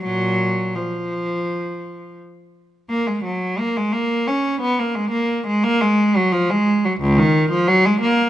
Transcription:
\new Staff \with { instrumentName = "Cello" } { \clef bass \time 4/4 \key bes \phrygian \tempo 4 = 87 <bes, ges>4 f2 r4 | bes16 aes16 ges8 bes16 aes16 bes8 des'8 ces'16 bes16 aes16 bes8 aes16 | bes16 aes8 ges16 f16 aes8 ges16 des,16 ees8 f16 ges16 aes16 bes8 | }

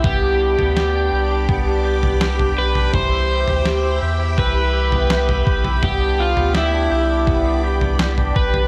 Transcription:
<<
  \new Staff \with { instrumentName = "String machine" } { \time 4/4 \key g \mixolydian \tempo 4 = 83 << { <d'' d'''>1 | <e'' g''>1 | <d'' d'''>1 | } \\ { <g' b''>1~ | <g' b''>1~ | <g' b''>1 | } >> }
  \new Staff \with { instrumentName = "Electric slide guitar" } { \time 4/4 \key g \mixolydian g'2.~ g'8 b'8 | c''4. r8 b'2 | g'8 f'8 e'4. r4 b'8 | }
  \new Staff \with { instrumentName = "Clean electric guitar" } { \time 4/4 \key g \mixolydian b16 d'16 g'16 b16 g'16 d'16 g'16 d'16 b16 d'16 g'16 b16 g'16 d'16 g'16 d'16 | e16 e'16 g'8 g'16 e'16 g'16 e'16 e16 e'16 g'16 b16 g'16 e'16 g'16 e'16 | b16 d'16 g'16 b16 g'16 d'16 g'16 d'16 b16 d'16 g'16 b16 g'16 d'16 g'16 d'16 | }
  \new Staff \with { instrumentName = "Analog synth bass" } { \clef bass \time 4/4 \key g \mixolydian c,8. d,8. c,8 c,4. b,,8 | c,8. d,8. e,8 c,4. b,,8 | c,8. d,8. c,8 c,4. b,,8 | }
  \new DrumStaff \with { instrumentName = "Drums" } \drummode { \time 4/4 <bd tomfh>8. tomfh16 sn4 <bd tomfh>8. tomfh16 sn16 tomfh8 tomfh16 | <bd tomfh>8. tomfh16 sn4 <bd tomfh>8. tomfh16 sn16 tomfh16 bd16 tomfh16 | <bd tomfh>8. tomfh16 sn4 <bd tomfh>8. tomfh16 sn16 tomfh16 bd16 tomfh16 | }
>>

